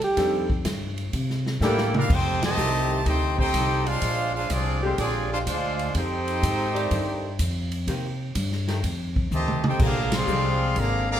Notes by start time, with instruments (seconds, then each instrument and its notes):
0.01 alto saxophone G4, muted upright bass stroke, ride
0.17 upright bass F2, saxophone section D#3 A3 D4 G4, upright piano G3 C4 D4 D#4 A4, kick, snare, ride
0.50 kick
0.65 upright bass G2, kick, snare, hi-hat pedal, ride
0.98 ride
1.13 upright bass C3, kick, ride
1.30 snare
1.47 snare
1.61 upright bass A2, saxophone section E3 D4 A4 A#4, upright piano G3 A#3 D4 E4 A4, trombone section A#3 E4 G4, trumpet section E4 A#4 D5 G5, snare, hi-hat pedal
1.78 snare
1.94 trumpet section D4 G4 A#4 F5, trombone section F4, mid tom
2.09 upright bass F2, trombone section C4 D#4 G4, trumpet section D#4 A4 C5 G5, kick, crash
2.43 trombone section C3 A3, trumpet section G4 C5 D#5 A5, snare, ride
2.57 upright bass C2, saxophone section D#3 A3 D#4 G4, hi-hat pedal
3.04 upright bass D2, trombone section C4 D#4 G4, trumpet section D#4 A4 C5 G5, kick, ride
3.36 trombone section C4 D#4 G4, trumpet section D#4 A4 C5 G5, kick
3.54 upright bass C2, kick, hi-hat pedal, ride
3.84 trombone section G#3 D4 F4, trumpet section D4 G#4 C5 F5, ride
4.02 upright bass A#1, kick, ride
4.33 trombone section G#3 D4 F4, trumpet section D4 G#4 C5 F5
4.49 upright bass C2, trombone section F3 G#3 D4, trumpet section C4 F4 G#4 D5, kick, hi-hat pedal, ride
4.82 saxophone section D3 G#3 C4 G4, trombone section F3 G#3 C4, trumpet section G#3 D4 F4 C5
4.96 upright bass A#1, trombone section F3 G#3 D4, trumpet section C4 F4 G#4 D5, kick, ride
5.30 trombone section G#3 D4 F4, trumpet section D4 G#4 C5 F5
5.45 upright bass D2, trombone section G#3 D4 F4, trumpet section D4 G#4 C5 F5, kick, hi-hat pedal, ride
5.79 ride
5.94 upright bass F2, trombone section C4 D#4 G4, trumpet section D#4 A4 C5 G5, kick, ride
6.28 ride
6.43 upright bass G#2, kick, hi-hat pedal, ride
6.74 saxophone section D#3 A3 G4 D5, ride
6.91 upright bass G2, kick, ride
7.39 upright bass F2, kick, hi-hat pedal, ride
7.72 ride
7.87 upright bass C3, saxophone section D#3 A#3 C4 G4, kick, ride
8.35 upright bass G2, kick, hi-hat pedal, ride
8.52 snare
8.68 saxophone section D#3 A3 D4 G4, snare, ride
8.83 upright bass F2, kick, ride
9.16 kick
9.31 upright bass D2, trombone section C3 D#3 A3, trumpet section G4 C5 D#5 A5, hi-hat pedal, high tom
9.48 mid tom
9.64 trombone section C4 D#4 G4, trumpet section D#4 A4 C5 G5, mid tom
9.79 upright bass A#1, saxophone section D3 G#3 C4 G4, trombone section D3 F3 A#3, trumpet section G#4 D5 F5 A#5, kick, crash
10.12 trombone section F3 G#3 C4, trumpet section G#4 D5 F5 C6, snare, ride
10.26 upright bass C2, saxophone section D3 G#3 C4 G4, hi-hat pedal
10.76 upright bass G#1, trombone section D3 F3 A#3, trumpet section G#4 D5 F5 A#5, kick, ride
11.08 trombone section D3 F3 A#3, trumpet section G#4 D5 F5 A#5